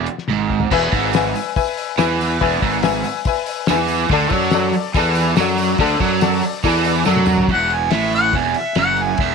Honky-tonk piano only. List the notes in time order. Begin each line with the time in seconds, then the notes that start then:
0.72 B4 E5 G#5
1.15 B4 E5 G#5
1.56 B4 E5 G#5
1.98 B4 E5 G#5
2.41 B4 E5 G#5
2.83 B4 E5 G#5
3.27 B4 E5 G#5
3.70 B4 E5 G#5
4.13 A4 D5 A5
4.53 A4 D5 A5
4.96 A4 D5 A5
5.40 A4 D5 F#5
5.80 A4 D5 A5
6.22 A4 D5 A5
6.64 A4 D5 A5
7.06 A4 D5 A5